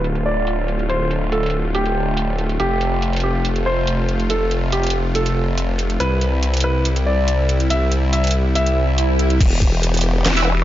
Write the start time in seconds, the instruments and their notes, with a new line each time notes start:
Already playing: wobble bass D1, supersaw synth D3 A3 F4
0.04 closed hi-hat
0.15 closed hi-hat
0.26 grand piano D5
0.47 closed hi-hat
0.68 closed hi-hat
0.79 closed hi-hat
0.89 grand piano C5, closed hi-hat
1.11 closed hi-hat
1.32 grand piano A4, closed hi-hat
1.43 closed hi-hat
1.46 closed hi-hat
1.50 closed hi-hat
1.75 grand piano G4, closed hi-hat
1.86 closed hi-hat
2.17 closed hi-hat
2.38 closed hi-hat
2.49 closed hi-hat
2.60 wobble bass F1, supersaw synth C3 F4, grand piano G4, closed hi-hat
2.81 closed hi-hat
3.02 closed hi-hat
3.13 closed hi-hat
3.16 closed hi-hat
3.20 grand piano G4, closed hi-hat
3.45 closed hi-hat
3.56 closed hi-hat
3.66 grand piano C5
3.87 closed hi-hat
4.09 closed hi-hat
4.20 closed hi-hat
4.30 grand piano A4, closed hi-hat
4.51 closed hi-hat
4.72 grand piano G4, closed hi-hat
4.83 closed hi-hat
4.87 closed hi-hat
4.90 closed hi-hat
5.15 grand piano A4, closed hi-hat
5.26 closed hi-hat
5.58 closed hi-hat
5.79 closed hi-hat
5.90 closed hi-hat
6.00 wobble bass C2, supersaw synth G3 E4, grand piano B4, closed hi-hat
6.21 closed hi-hat
6.43 closed hi-hat
6.54 closed hi-hat
6.57 closed hi-hat
6.60 grand piano B4, closed hi-hat
6.85 closed hi-hat
6.96 closed hi-hat
7.06 grand piano D5
7.28 closed hi-hat
7.49 closed hi-hat
7.60 closed hi-hat
7.70 grand piano E5, closed hi-hat
7.92 closed hi-hat
8.13 grand piano E5, closed hi-hat
8.24 closed hi-hat
8.27 closed hi-hat
8.31 closed hi-hat
8.55 grand piano E5, closed hi-hat, swell
8.66 closed hi-hat
8.98 closed hi-hat
9.19 closed hi-hat
9.30 closed hi-hat
9.41 wobble bass E1, supersaw synth B3 G4, kick, closed hi-hat, crash
9.62 kick, closed hi-hat
9.83 closed hi-hat
9.94 closed hi-hat
9.97 closed hi-hat
10.01 closed hi-hat
10.26 wobble bass E1, snare, clap, closed hi-hat
10.37 synth stab E4 B4 E5, closed hi-hat